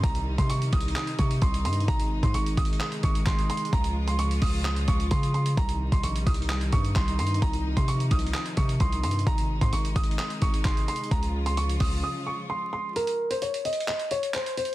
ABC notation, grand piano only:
X:1
M:4/4
L:1/16
Q:1/4=130
K:Cphr
V:1 name="Grand piano"
b3 c' d'2 e'2 e'2 d'2 c'2 c'2 | b3 c' d'2 e'2 e'2 d'2 c'2 c'2 | b3 c' d'2 e'2 e'2 d'2 c'2 c'2 | b3 c' d'2 e'2 e'2 d'2 c'2 c'2 |
b3 c' d'2 e'2 e'2 d'2 c'2 c'2 | b3 c' d'2 e'2 e'2 d'2 c'2 c'2 | b3 c' d'2 e'2 e'2 d'2 c'2 c'2 | B3 c d2 e2 e2 d2 c2 c2 |]